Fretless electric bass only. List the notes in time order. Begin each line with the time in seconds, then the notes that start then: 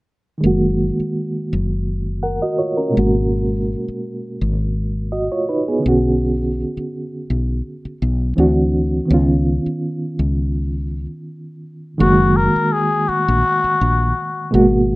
0.44 F#1
1.00 muted fretless electric bass stroke
1.53 F#1
2.97 G#1
3.88 muted fretless electric bass stroke
4.41 G#1
5.86 B1
6.77 muted fretless electric bass stroke
7.30 B1
7.85 muted fretless electric bass stroke
8.02 B1
8.38 D2
9.11 C#2
9.66 muted fretless electric bass stroke
10.19 C#2
12.00 F#1
12.56 muted fretless electric bass stroke
13.09 muted fretless electric bass stroke
13.28 A#1
13.64 muted fretless electric bass stroke
13.81 A#1
14.54 G#1